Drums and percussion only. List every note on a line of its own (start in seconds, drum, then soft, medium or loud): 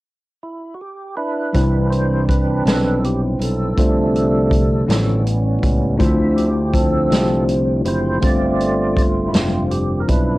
1.54 kick medium
1.54 closed hi-hat medium
1.92 closed hi-hat soft
2.29 kick medium
2.29 closed hi-hat medium
2.67 snare medium
2.67 closed hi-hat medium
3.04 closed hi-hat soft
3.41 closed hi-hat medium
3.78 kick medium
3.78 closed hi-hat medium
4.16 closed hi-hat soft
4.51 kick medium
4.51 closed hi-hat medium
4.90 snare medium
4.90 closed hi-hat medium
5.27 closed hi-hat soft
5.63 kick medium
5.63 closed hi-hat medium
6.00 kick medium
6.00 closed hi-hat medium
6.38 closed hi-hat soft
6.74 kick medium
6.74 closed hi-hat medium
7.12 snare medium
7.12 closed hi-hat medium
7.48 closed hi-hat soft
7.85 closed hi-hat medium
8.22 kick medium
8.22 closed hi-hat medium
8.60 closed hi-hat soft
8.97 kick medium
8.97 closed hi-hat medium
9.34 snare medium
9.34 closed hi-hat medium
9.71 closed hi-hat soft
10.08 kick medium
10.08 closed hi-hat medium